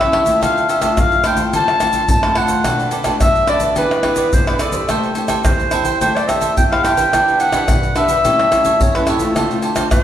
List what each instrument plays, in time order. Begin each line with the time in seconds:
Already playing: nylon-string guitar E3, clarinet E5
0.01 nylon-string guitar G3 C#4 E4, cavaquinho A4 C#5 E5, pandeiro, tamborim, high agogo, shaker
0.12 cavaquinho G4 A4 C#5 E5, pandeiro, tamborim, high agogo
0.25 nylon-string guitar A3 C4 F4, cavaquinho A4 C#5 E5, pandeiro, shaker, surdo
0.41 nylon-string guitar D3, cavaquinho D4 A4 C5 F5, clarinet F5, pandeiro, tamborim, low agogo, shaker, surdo
0.58 pandeiro, shaker
0.69 cavaquinho D4 A4 C5 F5, clarinet E5, pandeiro, low agogo, shaker
0.81 nylon-string guitar A3 C4 F4, cavaquinho D4 A4 C5 F5, pandeiro, tamborim, low agogo, shaker, surdo
0.97 nylon-string guitar A2, clarinet F5, pandeiro, tamborim, shaker, surdo
1.12 pandeiro, shaker
1.24 nylon-string guitar A3 C4 F4, cavaquinho D4 A4 C5 F5, clarinet G5, pandeiro, tamborim, high agogo, shaker
1.37 cavaquinho A4 C5 F5, pandeiro, shaker, surdo
1.53 nylon-string guitar D3, cavaquinho D4 A4 C5 F5, clarinet A5, pandeiro, low agogo, shaker, surdo
1.68 cavaquinho A4 C5 F5, pandeiro, tamborim, shaker
1.80 nylon-string guitar A3 C4 F4, cavaquinho D4 A4 C5 F5, pandeiro, tamborim, low agogo, shaker, surdo
1.93 cavaquinho D4 A4 C5 F5, pandeiro, shaker, surdo
2.08 nylon-string guitar A2, clarinet A5, pandeiro, shaker, surdo
2.23 nylon-string guitar A3 C4 F4, cavaquinho A4 C5 F5, pandeiro, tamborim, high agogo, shaker
2.35 cavaquinho D4 A4 C5 F5, clarinet F#5, pandeiro, tamborim, high agogo
2.48 cavaquinho A4 C5 F5, pandeiro, shaker, surdo
2.64 nylon-string guitar B2 A3 D4 F#4, cavaquinho D4 A4 B4 D5, pandeiro, tamborim, low agogo, shaker, surdo
2.80 pandeiro, shaker
2.91 cavaquinho D4 A4 B4 D5, pandeiro, low agogo, shaker
3.04 nylon-string guitar A3 D4 F#4, cavaquinho D4 A4 B4 D5, pandeiro, tamborim, low agogo, shaker, surdo
3.20 nylon-string guitar F#3, clarinet E5, pandeiro, tamborim, shaker, surdo
3.35 pandeiro, shaker
3.47 nylon-string guitar A3 D4 F#4, cavaquinho D4 A4 B4 D5, clarinet D5, pandeiro, tamborim, high agogo, shaker
3.60 cavaquinho A4 B4 D5, pandeiro, shaker, surdo
3.76 nylon-string guitar E3 B3 D4 G#4, cavaquinho E4 G#4 B4 D5, clarinet B4, pandeiro, low agogo, shaker, surdo
3.91 cavaquinho G#4 B4 D5, pandeiro, tamborim, shaker
4.03 nylon-string guitar B3 D4 G#4, cavaquinho E4 G#4 B4 D5, pandeiro, tamborim, low agogo, surdo
4.16 cavaquinho E4 G#4 B4 D5, pandeiro, shaker, surdo
4.33 nylon-string guitar B2, clarinet C5, pandeiro, shaker, surdo
4.47 nylon-string guitar B3 D4 G#4, cavaquinho G#4 B4 D5, clarinet B4, pandeiro, tamborim, high agogo, shaker
4.59 cavaquinho E4 G#4 B4 D5, clarinet A4, pandeiro, tamborim, high agogo, shaker
4.72 nylon-string guitar E4 G4 C5, cavaquinho G#4 B4 D5, pandeiro, shaker, surdo
4.89 nylon-string guitar A3, cavaquinho A4 C5 E5 G5, pandeiro, tamborim, low agogo, shaker, surdo
5.03 pandeiro, shaker
5.15 cavaquinho A4 C5 E5 G5, pandeiro, low agogo, shaker
5.28 nylon-string guitar E4 G4 C5, cavaquinho A4 C5 E5 G5, pandeiro, tamborim, low agogo, shaker, surdo
5.45 nylon-string guitar E3, clarinet C5, pandeiro, tamborim, shaker, surdo
5.60 pandeiro, shaker
5.71 nylon-string guitar E4 G4 C5, cavaquinho A4 C5 E5 G5, pandeiro, tamborim, high agogo, shaker
5.85 cavaquinho C5 E5 G5, pandeiro, shaker, surdo
6.01 nylon-string guitar A3, cavaquinho A4 C5 E5 G5, clarinet C5, pandeiro, low agogo, shaker, surdo
6.16 cavaquinho C5 E5 G5, clarinet D5, pandeiro, tamborim, shaker
6.27 nylon-string guitar E4 G4 C5, cavaquinho A4 C5 E5 G5, clarinet E5, pandeiro, tamborim, low agogo, shaker, surdo
6.41 cavaquinho A4 C5 E5 G5, pandeiro, shaker, surdo
6.57 nylon-string guitar E3, clarinet G5, pandeiro, shaker, surdo
6.71 nylon-string guitar E4 G4 C5, cavaquinho C5 E5 G5, clarinet F5, pandeiro, tamborim, high agogo, shaker
6.83 cavaquinho A4 C5 E5 G5, clarinet G5, pandeiro, tamborim, high agogo, shaker
6.97 nylon-string guitar D4 G4 B4, cavaquinho C5 E5 G5, pandeiro, shaker, surdo
7.12 nylon-string guitar E3, cavaquinho D4 G4 B4 E5, pandeiro, tamborim, low agogo, shaker, surdo
7.28 pandeiro, shaker
7.40 cavaquinho D4 G4 B4 E5, clarinet F#5, pandeiro, low agogo, shaker
7.52 nylon-string guitar D4 G4 B4, cavaquinho D4 G4 B4 E5, pandeiro, tamborim, low agogo, shaker, surdo
7.68 nylon-string guitar B2, pandeiro, tamborim, shaker, surdo
7.83 pandeiro, shaker
7.95 nylon-string guitar D4 G4 B4, cavaquinho D4 G4 B4 E5, clarinet E5, pandeiro, tamborim, high agogo, shaker
8.08 cavaquinho G4 B4 E5, pandeiro, shaker, surdo
8.24 nylon-string guitar A2 G3 C#4 E4, cavaquinho G4 A4 C#5 E5, pandeiro, low agogo, shaker, surdo
8.39 cavaquinho A4 C#5 E5, pandeiro, tamborim, shaker
8.51 nylon-string guitar G3 C#4 E4, cavaquinho G4 A4 C#5 E5, pandeiro, tamborim, low agogo, shaker, surdo
8.65 cavaquinho G4 A4 C#5 E5, pandeiro, shaker, surdo
8.80 nylon-string guitar E3, clarinet C#5, pandeiro, shaker, surdo
8.95 nylon-string guitar G3 C#4 E4, cavaquinho A4 C#5 E5, clarinet B4, pandeiro, tamborim, high agogo, shaker
9.07 cavaquinho G4 A4 C#5 E5, clarinet A4, pandeiro, tamborim, high agogo, shaker
9.19 nylon-string guitar A3 C4 F4, cavaquinho A4 C#5 E5, pandeiro, shaker, surdo
9.36 nylon-string guitar D3, cavaquinho D4 A4 C5 F5, pandeiro, tamborim, low agogo, shaker, surdo
9.51 nylon-string guitar A3 C4 F4, pandeiro, shaker
9.62 cavaquinho D4 A4 C5 F5, pandeiro, low agogo, shaker
9.76 cavaquinho D4 A4 C5 F5, pandeiro, tamborim, low agogo, shaker, surdo
9.91 nylon-string guitar A2 A3 C4 F4, clarinet C5, pandeiro, tamborim, shaker, surdo